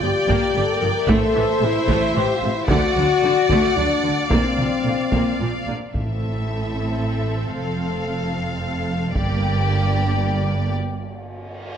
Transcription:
0.00 0.11 G1 medium
0.00 0.11 G2 medium
0.00 0.10 F3 soft
0.00 0.55 G4 medium
0.00 1.06 D5 medium
0.00 1.05 G5 medium
0.28 0.37 G1 medium
0.28 0.36 G2 medium
0.28 0.54 A#3 medium
0.28 taiko medium
0.54 0.64 G1 medium
0.54 0.64 G2 medium
0.54 0.62 G3 medium
0.54 0.74 A4 medium
0.73 0.91 A#4 loud
0.80 0.91 G1 soft
0.80 0.90 G2 medium
0.80 0.88 F3 medium
0.93 1.09 A#4 medium
1.08 1.16 A1 medium
1.08 1.16 A2 medium
1.08 1.33 A3 medium
1.08 1.63 A4 loud
1.08 2.69 C5 medium
1.08 2.69 E5 medium
1.08 taiko loud
1.35 1.43 A1 medium
1.35 1.43 A2 medium
1.35 1.43 E3 medium
1.62 1.70 A1 medium
1.62 1.70 A2 medium
1.62 1.70 C3 medium
1.62 2.16 E4 loud
1.88 1.97 A1 medium
1.88 1.96 A2 medium
1.88 2.14 A3 medium
1.88 taiko medium
2.15 2.24 A1 medium
2.15 2.23 A2 medium
2.15 2.23 E3 medium
2.15 2.34 G4 loud
2.36 2.52 F4 medium
2.42 2.50 A1 medium
2.42 2.51 A2 medium
2.42 2.51 C3 medium
2.54 2.70 E4 medium
2.68 2.77 D2 medium
2.68 2.77 D3 medium
2.68 2.94 A3 medium
2.68 3.75 F#4 loud
2.68 5.70 D5 medium
2.68 4.28 F#5 medium
2.68 taiko medium
2.96 3.04 D2 medium
2.96 3.05 D3 medium
2.96 3.04 F#3 medium
3.22 3.30 D2 medium
3.22 3.32 D3 medium
3.50 3.58 D2 medium
3.50 3.58 D3 medium
3.50 3.75 A3 medium
3.50 taiko medium
3.77 3.85 D2 medium
3.77 3.85 D3 soft
3.77 3.86 F#3 medium
3.77 4.31 D4 medium
4.04 4.12 D2 soft
4.04 4.12 D3 soft
4.04 4.12 D3 medium
4.30 4.39 A#1 medium
4.30 4.38 A#2 medium
4.30 4.57 A#3 medium
4.30 5.38 C4 medium
4.30 5.72 F5 medium
4.30 taiko medium
4.57 4.66 A#1 soft
4.57 4.65 A#2 soft
4.57 4.68 F3 soft
4.57 taiko mid soft
4.85 4.94 A#1 soft
4.85 4.93 A#2 soft
4.85 4.94 D3 soft
5.12 5.22 A#1 medium
5.12 5.20 A#2 medium
5.12 5.39 A#3 medium
5.12 taiko medium
5.40 5.49 A#1 soft
5.40 5.48 A#2 soft
5.40 5.49 F3 soft
5.67 5.75 A#1 soft
5.67 5.76 A#2 soft
5.67 5.77 D3 soft
5.94 7.52 A1 soft
5.94 6.71 A2 soft
5.94 7.52 A2 soft
5.94 7.52 E3 soft
5.94 9.11 C4 soft
5.94 9.12 C4 soft
5.94 9.11 A4 soft
5.94 7.52 E5 soft
5.94 taiko soft
7.56 9.13 F1 soft
7.56 9.13 F2 soft
7.56 9.13 A3 soft
7.56 9.12 F5 soft
9.15 10.73 G1 medium
9.15 10.73 G2 medium
9.15 10.73 A#3 medium
9.15 10.74 A#3 medium
9.15 10.77 D4 medium
9.15 10.77 G4 medium
9.15 10.73 D5 medium
9.15 taiko medium
10.76 reverse cymbal soft

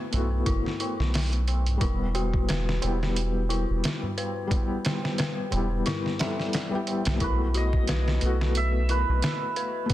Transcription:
0.00 0.11 A3 medium
0.00 0.12 B3 medium
0.00 0.10 E4 medium
0.00 0.46 E4 medium
0.00 0.12 F#4 medium
0.00 1.83 B4 medium
0.11 0.43 B1 medium
0.11 0.33 A3 medium
0.11 0.34 B3 medium
0.11 0.35 E4 medium
0.11 closed hi-hat medium
0.11 tabla na medium
0.11 tabla ge medium
0.16 0.35 F#4 medium
0.33 tabla na soft
0.46 0.63 F#1 medium
0.46 0.79 E4 loud
0.46 kick loud
0.46 closed hi-hat medium
0.46 tabla na soft
0.46 tabla ge medium
0.66 snare soft
0.66 tabla na soft
0.80 1.12 E4 medium
0.80 closed hi-hat medium
0.80 tabla na medium
0.99 1.79 B1 medium
0.99 snare soft
0.99 tabla na soft
1.14 snare loud
1.14 open hi-hat medium
1.14 tabla na soft
1.33 closed hi-hat soft
1.48 closed hi-hat medium
1.48 tabla na medium
1.66 closed hi-hat soft
1.66 tabla na soft
1.66 tabla ge medium
1.77 2.79 E1 loud
1.77 2.77 G3 medium
1.77 2.78 B3 medium
1.77 2.12 E4 medium
1.77 kick loud
1.77 closed hi-hat medium
1.77 tabla na medium
1.84 2.80 E4 medium
2.00 tabla na soft
2.15 2.46 F#4 medium
2.15 closed hi-hat medium
2.15 tabla na medium
2.34 kick medium
2.34 tabla na soft
2.48 3.47 B4 medium
2.48 snare loud
2.48 closed hi-hat medium
2.48 tabla na medium
2.68 snare soft
2.68 tabla na soft
2.81 3.65 E1 medium
2.81 3.03 G3 medium
2.81 3.04 B3 medium
2.81 3.05 E4 medium
2.81 closed hi-hat medium
2.81 tabla na medium
2.86 3.05 G4 medium
3.01 snare soft
3.01 tabla na soft
3.16 closed hi-hat medium
3.16 tabla na soft
3.36 tabla na soft
3.49 3.82 E4 medium
3.49 closed hi-hat medium
3.49 tabla na medium
3.69 3.82 E1 medium
3.69 tabla na soft
3.83 snare loud
3.83 closed hi-hat medium
3.83 tabla na soft
4.03 tabla ge medium
4.18 4.50 B4 medium
4.18 closed hi-hat medium
4.18 tabla na medium
4.36 tabla na soft
4.47 5.47 G3 medium
4.47 5.48 B3 medium
4.47 kick loud
4.51 5.50 E4 medium
4.51 closed hi-hat medium
4.51 tabla na soft
4.57 5.51 G4 medium
4.70 tabla na soft
4.85 snare loud
4.85 closed hi-hat medium
4.85 tabla na medium
5.03 snare soft
5.03 tabla na soft
5.18 5.83 B4 medium
5.18 snare loud
5.18 closed hi-hat medium
5.18 tabla na medium
5.38 tabla na soft
5.50 5.82 E1 medium
5.50 5.73 G3 medium
5.50 5.73 B3 medium
5.50 5.74 E4 medium
5.50 closed hi-hat medium
5.50 tabla na medium
5.50 tabla ge medium
5.55 5.75 G4 medium
5.71 tabla na soft
5.86 6.18 E4 loud
5.86 snare loud
5.86 closed hi-hat medium
5.86 tabla na soft
5.86 tabla ge medium
6.05 snare soft
6.05 tabla na soft
6.18 6.67 G3 medium
6.18 6.68 B3 medium
6.18 6.68 E4 medium
6.18 6.52 E5 medium
6.18 snare loud
6.18 closed hi-hat medium
6.18 tabla na medium
6.23 6.69 A4 medium
6.39 snare soft
6.39 tabla na soft
6.53 snare loud
6.53 closed hi-hat medium
6.53 tabla na soft
6.70 7.16 G3 medium
6.70 7.17 B3 medium
6.70 7.18 E4 medium
6.70 tabla na soft
6.75 7.18 G4 loud
6.87 closed hi-hat medium
6.87 tabla na medium
7.05 7.19 B1 loud
7.05 snare loud
7.05 closed hi-hat medium
7.05 tabla na soft
7.05 tabla ge medium
7.16 8.16 A3 medium
7.16 8.18 B3 medium
7.20 8.19 B1 loud
7.20 7.52 E4 loud
7.20 8.19 E4 medium
7.20 7.32 B4 medium
7.20 kick loud
7.20 closed hi-hat medium
7.26 8.21 F#4 medium
7.54 7.85 F#4 medium
7.54 8.63 D#5 loud
7.54 closed hi-hat medium
7.73 kick loud
7.87 8.86 B4 medium
7.87 snare loud
7.87 closed hi-hat medium
8.08 snare medium
8.20 9.05 B1 medium
8.20 8.42 A3 medium
8.20 8.43 B3 medium
8.20 8.44 E4 medium
8.20 closed hi-hat medium
8.25 8.45 F#4 loud
8.41 snare soft
8.55 9.94 E5 loud
8.55 closed hi-hat medium
8.89 9.21 E4 medium
8.89 9.94 B4 medium
8.89 closed hi-hat medium
9.09 9.21 B1 medium
9.22 snare loud
9.22 closed hi-hat medium
9.56 9.89 B4 medium
9.56 closed hi-hat medium
9.86 9.94 A3 medium
9.86 9.94 B3 medium
9.86 closed hi-hat medium
9.90 kick loud

